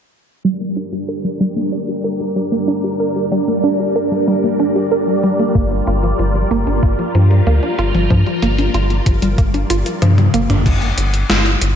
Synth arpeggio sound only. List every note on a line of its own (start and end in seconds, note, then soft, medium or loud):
0.45 0.55 G3 loud
0.61 0.76 A#3 medium
0.77 0.83 D4 medium
0.93 1.03 G4 medium
1.09 1.24 A#4 loud
1.24 1.39 G3 medium
1.40 1.51 G3 loud
1.56 1.72 A#3 medium
1.72 1.78 D4 loud
1.88 1.98 G4 medium
2.04 2.19 A#4 medium
2.20 2.35 G3 medium
2.36 2.46 G3 loud
2.52 2.67 A#3 medium
2.68 2.74 D4 loud
2.84 2.94 G4 medium
3.00 3.15 A#4 loud
3.16 3.31 G3 medium
3.32 3.42 G3 medium
3.48 3.63 A#3 medium
3.64 3.70 D4 loud
3.80 3.90 G4 medium
3.96 4.11 A#4 loud
4.12 4.26 G3 medium
4.28 4.38 G3 loud
4.44 4.59 A#3 medium
4.60 4.66 D4 loud
4.76 4.86 G4 medium
4.92 5.07 A#4 loud
5.08 5.22 G3 medium
5.24 5.34 G3 medium
5.39 5.54 A#3 medium
5.55 5.61 A#3 loud
5.71 5.81 D4 medium
5.87 6.02 F4 loud
6.03 6.18 F3 medium
6.19 6.29 F3 loud
6.35 6.50 G3 medium
6.51 6.57 A#3 loud
6.67 6.77 D4 medium
6.83 6.98 F4 loud
6.99 7.14 F3 medium
7.15 7.25 F3 medium
7.31 7.46 G3 medium
7.47 7.53 A#3 loud
7.63 7.73 D4 medium
7.79 7.94 F4 loud
7.95 8.09 F3 medium
8.11 8.21 F3 loud
8.27 8.42 G3 medium
8.43 8.49 A#3 medium
8.59 8.69 D4 medium
8.74 8.90 F4 medium
8.90 9.05 F3 medium
9.06 9.16 F3 loud
9.22 9.37 G3 medium
9.38 9.44 A#3 medium
9.54 9.64 D4 medium
9.70 9.85 F4 medium
9.86 10.01 F3 medium
10.02 10.12 F3 loud
10.18 10.33 G3 medium
10.34 10.40 A#3 medium
10.50 10.60 D4 medium